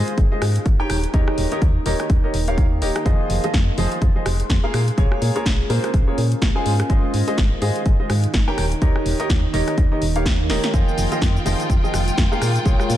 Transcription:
Already playing: G#3 D#4 F4 G#4 C5 D#5 F5
0.08 closed hi-hat
0.18 G#1, kick, closed hi-hat
0.32 G#3 F4 G#4 C5 D#5
0.42 G#2, cross-stick, open hi-hat
0.56 closed hi-hat
0.66 G#1, kick, closed hi-hat
0.80 D#3 G4 A#4 C#5 G5
0.90 D#1, cross-stick, open hi-hat
0.98 A#4
1.04 closed hi-hat
1.14 D#2 D#3 G4 A#4 C#5 D#5, kick, closed hi-hat
1.28 cross-stick
1.38 D#1, open hi-hat
1.52 D#3 G4 A#4 C#5 D#5, closed hi-hat
1.62 D#2, kick, closed hi-hat
1.70 G5
1.86 D#1 D#3 G4 A#4 C#5 D#5, open hi-hat
2.00 cross-stick, closed hi-hat
2.10 D#2, kick, closed hi-hat
2.24 D#3 G4 A#4 C#5 D#5
2.34 D#1, open hi-hat
2.48 D#3 G4 A#4 C#5 F5, closed hi-hat
2.58 D#2, kick, closed hi-hat
2.82 D#1 G4 A#4 C#5 D#5, open hi-hat
2.96 cross-stick, closed hi-hat
3.06 F2 F3 F4 G#4 C5 D#5, kick, closed hi-hat
3.30 F1 G#4 F5, open hi-hat
3.38 C6
3.44 F3 F4 G#4 C5 D#5, closed hi-hat
3.54 F2, kick, snare, closed hi-hat
3.78 F1 F3 F4 G#4 C5 D#5, open hi-hat
3.92 closed hi-hat
4.02 F2, kick, closed hi-hat
4.16 F3 F4 G#4 C5 D#5
4.26 F1, cross-stick, open hi-hat
4.40 closed hi-hat
4.50 F2, kick, snare, closed hi-hat
4.64 A#3 F4 G#4 A#4 F5
4.74 A#2 C#4, cross-stick, open hi-hat
4.88 closed hi-hat
4.98 A#1 A#3 F4 G#4 A#4 C#5, kick, closed hi-hat
5.12 cross-stick
5.22 A#2, open hi-hat
5.36 A#3 F4 G#4 A#4 C#5, closed hi-hat
5.40 A#4
5.46 A#1, kick, snare, closed hi-hat
5.70 A#2 A#3 F4 G#4 A#4 C5, open hi-hat
5.84 cross-stick, closed hi-hat
5.94 A#1, kick, closed hi-hat
6.08 A#3 F4 G#4 A#4 C#5
6.18 A#2, open hi-hat
6.32 closed hi-hat
6.42 A#1, kick, snare, closed hi-hat
6.55 G#3 F4 G#4 C5 G#5
6.66 G#2 D#4, open hi-hat
6.80 cross-stick, closed hi-hat
6.90 G#1 G#3 F4 G#4 C5 D#5, kick, closed hi-hat
7.14 G#2, open hi-hat
7.28 G#3 F4 G#4 C5 D#5, closed hi-hat
7.38 G#1, kick, snare, closed hi-hat
7.62 G#2 G#3 F4 G#4 C5 D#5, open hi-hat
7.76 closed hi-hat
7.86 G#1, kick, closed hi-hat
8.00 G#3 F4 G#4 C5 D#5
8.10 G#2, cross-stick, open hi-hat
8.24 closed hi-hat
8.34 G#1, kick, snare, closed hi-hat
8.48 D#3 G4 A#4 C#5 G5
8.58 D#1, cross-stick, open hi-hat
8.72 closed hi-hat
8.78 D#2 D#3 G4 A#4 C#5 D#5, kick, closed hi-hat
8.96 cross-stick
9.06 D#1, open hi-hat
9.20 D#3 G4 A#4 C#5 D#5 G5, closed hi-hat
9.30 D#2, kick, snare, closed hi-hat
9.53 D#1 D#3 G4 A#4 C#5 D#5, open hi-hat
9.68 cross-stick, closed hi-hat
9.78 D#2, kick, closed hi-hat
9.92 D#3 G4 A#4 C#5 D#5
10.02 D#1, open hi-hat
10.16 D#3 G4 A#4 C#5 F5, closed hi-hat
10.26 D#2, kick, snare, closed hi-hat
10.50 D#1 G4 A#4 C#5 D#5, snare, open hi-hat
10.64 snare, closed hi-hat
10.74 F2 F3 F4 G#4 C5 D#5 G5, kick, closed hi-hat, cabasa
10.82 G#3
10.88 cabasa
10.98 F1, open hi-hat, cabasa
11.05 C6
11.12 F3 F4 G#4 C5 D#5, closed hi-hat, cabasa
11.22 F2, kick, snare, closed hi-hat, cabasa
11.37 cabasa
11.46 F1 F3 F4 G#4 C5 D#5, open hi-hat, cabasa
11.50 F5
11.60 closed hi-hat, cabasa
11.70 F2, kick, closed hi-hat, cabasa
11.84 F3 F4 G#4 C5 D#5, cabasa
11.94 F1, cross-stick, open hi-hat, cabasa
12.08 closed hi-hat, cabasa
12.18 F2, kick, snare, closed hi-hat, cabasa
12.32 A#3 F4 G#4 A#4 F5, cabasa
12.42 A#2, cross-stick, open hi-hat, cabasa
12.56 closed hi-hat, cabasa
12.66 A#1 A#3 F4 G#4 A#4 C#5, kick, closed hi-hat, cabasa
12.80 cross-stick, cabasa
12.90 A#2, open hi-hat, cabasa

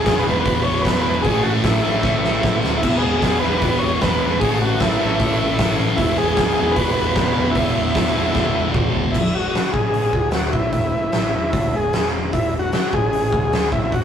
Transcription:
Already playing: E2 B2 E3
0.04 E1 G#4, kick, snare, open hi-hat
0.19 B4
0.27 E1 B2 E3
0.31 E2
0.41 B4
0.46 E1, kick, open hi-hat
0.63 E1 C#5
0.82 E1 B4, kick
0.86 snare, open hi-hat
1.02 E1 B4
1.22 A1 A2 G#4, kick, open hi-hat
1.28 E3 A3
1.43 A1 F#4
1.64 A1 E4, kick, snare, open hi-hat
1.84 A1 A2 E3 A3
2.03 A1, kick, snare
2.23 A1, snare
2.43 A1, kick, snare
2.64 D2, snare
2.78 E4
2.83 E1 E2 B2 E3, kick, crash
2.97 G#4 B4
3.05 E1
3.19 G#4, kick, open hi-hat
3.23 E1, snare
3.40 E3 B4
3.45 E1 E2 B2
3.58 E1 B4, open hi-hat
3.62 kick
3.79 E1 C#5
4.01 E1 B4, kick, snare, open hi-hat
4.20 E1 B4
4.40 A1 A2 E3 G#4, kick, open hi-hat
4.45 A3
4.61 A1 F#4
4.80 A1 E4, kick, snare, open hi-hat
4.99 A1 A2 E3 A3
5.19 A1, kick, open hi-hat
5.42 A1
5.59 A1, kick, snare, open hi-hat
5.79 A1
5.96 E1 E2 E4, kick, open hi-hat
6.00 B2 E3
6.18 E1 G#4
6.36 E1, kick, snare, open hi-hat
6.54 E3 G#4
6.59 E1 E2 B2
6.71 B4
6.76 E1, kick, open hi-hat
6.92 B4
7.00 E1
7.15 E1, kick, snare, open hi-hat
7.38 E1
7.51 E2 E4
7.55 E1 B2 E3, kick, open hi-hat
7.76 E1
7.95 E1, kick, snare, open hi-hat
8.15 E1 E2 B2 E3
8.35 E1, kick, snare
8.55 E1
8.74 E1, kick, mid tom
8.94 E1, floor tom
9.12 E1 E4, kick, crash
9.35 E1 F#4
9.55 snare, open hi-hat
9.73 A1 G#4, kick
9.94 open hi-hat
10.13 D2, kick
10.31 F#4, snare, open hi-hat
10.53 B1 E4, kick
10.72 E1 E4, kick, open hi-hat
10.94 muted picked electric bass stroke
11.12 A1, snare, open hi-hat
11.34 E1 E4
11.53 D2, kick, open hi-hat
11.73 E1 G#4
11.93 E1, snare, open hi-hat
12.33 E1 E4, kick, open hi-hat
12.54 E1
12.59 F#4
12.73 snare, open hi-hat
12.93 A1 G#4, kick
13.13 open hi-hat
13.33 D2, kick
13.53 snare, open hi-hat
13.72 B1 E4, kick
13.84 E4
13.92 E1 F#4, kick, open hi-hat

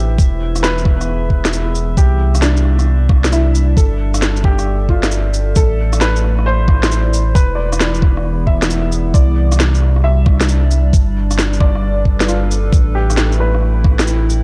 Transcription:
Already playing: A1 A3 E4 G4 B4 C5 E5
0.18 E1 E3, kick, shaker
0.29 B3
0.56 cross-stick, shaker
0.63 B4, snare, shaker
0.78 shaker
0.85 kick, cross-stick
0.91 G#4
1.01 cross-stick, shaker
1.30 kick
1.45 snare, shaker
1.53 shaker
1.75 shaker
1.97 C2 C3 G4, kick, shaker
2.30 G3
2.35 cross-stick, shaker
2.42 D4, snare, shaker
2.57 D5, shaker
2.65 cross-stick
2.79 D4, cross-stick, shaker
3.09 kick, cross-stick
3.24 snare, shaker
3.32 E4, shaker
3.55 shaker
3.77 G1 A4, kick, shaker
3.99 A4
4.14 cross-stick, shaker
4.22 snare, shaker
4.36 shaker
4.44 G4, kick, cross-stick
4.59 D5, cross-stick, shaker
4.89 F4, kick
5.03 snare, shaker
5.11 shaker
5.34 shaker
5.56 A1 A3 A4, kick, shaker
5.93 cross-stick, shaker
6.01 B4, snare, shaker
6.06 E4
6.16 shaker
6.24 cross-stick
6.39 C5, cross-stick
6.46 C5
6.68 kick, cross-stick
6.83 snare, shaker
6.91 shaker
7.13 shaker
7.35 E1 E3 B4, kick, shaker
7.55 D5
7.72 B3, cross-stick, shaker
7.80 snare, shaker
7.94 shaker
8.02 kick, cross-stick
8.17 G#4, cross-stick
8.47 E5, kick
8.62 snare, shaker
8.70 shaker
8.92 shaker
9.14 C2 C3 D5, kick, shaker
9.52 G3, cross-stick, shaker
9.60 snare, shaker
9.75 shaker
9.82 cross-stick
9.88 D4
9.96 D5, cross-stick
10.04 E5
10.26 kick, cross-stick
10.41 snare, shaker
10.49 shaker
10.71 shaker
10.93 G1, kick, shaker
11.31 cross-stick, shaker
11.39 snare, shaker
11.53 shaker
11.61 B4 D5, kick, cross-stick
11.75 A4, cross-stick
12.05 kick
12.20 snare, shaker
12.28 F4, shaker
12.51 shaker
12.73 A1 A3, kick, shaker
12.94 E4 G4
13.10 cross-stick, shaker
13.17 snare, shaker
13.32 shaker
13.40 B4, cross-stick
13.54 C4, cross-stick
13.84 kick, cross-stick
13.99 snare, shaker
14.07 shaker
14.30 shaker

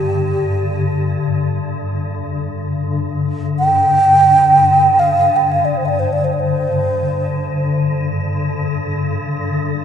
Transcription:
Already playing: G2 D3 G4
2.66 G2 D3
3.59 G5
4.99 F5
5.36 G5
5.52 F5
5.65 D5
5.74 C5 D5
5.85 D5 F5
5.99 C5
6.12 D5
6.24 C5
6.33 D5
6.40 C5

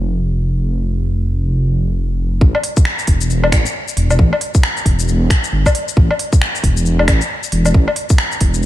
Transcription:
Already playing: F1
2.41 A1, kick
2.55 low woodblock
2.64 open hi-hat
2.77 kick, shaker
2.85 finger snap
2.99 shaker
3.07 E1, kick, open hi-hat
3.21 shaker
3.30 shaker
3.44 low woodblock
3.52 A1, finger snap, kick, open hi-hat, low woodblock
3.66 shaker
3.88 shaker
3.97 E1, open hi-hat
4.11 low woodblock, shaker
4.19 A1, kick
4.33 low woodblock
4.41 open hi-hat
4.55 kick, shaker
4.63 finger snap
4.77 shaker
4.86 E1, kick, open hi-hat
4.99 shaker
5.08 shaker
5.30 finger snap, kick, open hi-hat
5.44 shaker
5.52 G1
5.66 kick, low woodblock, shaker
5.75 open hi-hat
5.88 shaker
5.97 A1, kick
6.11 low woodblock
6.19 open hi-hat
6.33 kick, shaker
6.42 finger snap
6.55 shaker
6.63 E1, kick, open hi-hat
6.77 shaker
6.86 shaker
6.99 low woodblock
7.08 A1, finger snap, kick, open hi-hat, low woodblock
7.21 shaker
7.43 shaker
7.52 E1, open hi-hat
7.65 low woodblock, shaker
7.74 A1, kick
7.88 low woodblock
7.96 open hi-hat
8.10 kick, shaker
8.18 finger snap
8.32 shaker
8.41 E1, kick, open hi-hat
8.54 shaker

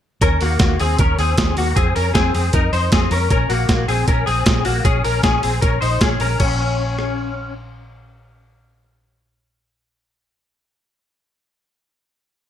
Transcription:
0.21 D#2 C#4 A#4, kick, closed hi-hat
0.41 D#2 A#3 F#4, open hi-hat
0.59 D#2, kick, snare, closed hi-hat
0.80 D#2 C4 G#4, open hi-hat
0.99 D#2 C#4 A#4, kick, closed hi-hat
1.19 D#2 C4 G#4, open hi-hat
1.38 kick, snare, closed hi-hat
1.57 D#2 A#3 F#4, open hi-hat
1.76 F2 C4 G#4, kick, closed hi-hat
1.95 F2 C#4 A#4, open hi-hat
2.14 F2 C4 G#4, kick, snare, closed hi-hat
2.34 F2 C4 G#4, open hi-hat
2.53 F2 D#4 A#4, kick, closed hi-hat
2.73 F2 D#4 C5, open hi-hat
2.92 F2 C4 G#4, kick, snare, closed hi-hat
3.11 F2 C#4 A#4, open hi-hat
3.30 A#1 C#4 A#4, kick, closed hi-hat
3.49 A#1 A#3 F#4, open hi-hat
3.69 A#1, kick, snare, closed hi-hat
3.88 A#1 C4 G#4, open hi-hat
4.08 A#1 C#4 A#4, kick, closed hi-hat
4.26 A#1 C4 G#4, open hi-hat
4.46 A#1, kick, snare, closed hi-hat
4.65 A#1 A#3 F#4, open hi-hat
4.85 A#1 C#4 G#4, kick, closed hi-hat
5.04 A#1 C#4 A#4, open hi-hat
5.23 A#1 C#4 G#4, kick, snare, closed hi-hat
5.43 A#1 C4 G#4, open hi-hat
5.61 A#1 C#4 A#4, kick, closed hi-hat
5.81 A#1 D#4 C5, open hi-hat
6.01 A#1 C#4 G#4, kick, snare, closed hi-hat
6.20 A#1 C#4 A#4, open hi-hat
6.40 A#1 C#4, kick, crash
6.99 cross-stick

